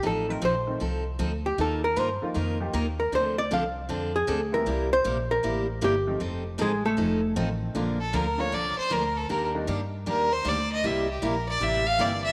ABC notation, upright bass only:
X:1
M:4/4
L:1/8
Q:"Swing" 1/4=156
K:Bb
V:1 name="Upright bass" clef=bass
A,,,2 B,,,2 C,,2 D,,2 | E,,2 G,, z F,,2 E,,2 | D,,2 C,,2 F,,2 D,,2 | C,,2 B,,,2 A,,,2 G,,,2 |
F,,,2 A,,,2 F,,,2 A,,,2 | B,,,2 D,,2 C,, z D,,2 | E,,2 G,,2 E,,2 D,,2 | C,,2 B,,,2 A,,,2 G,,,2 |]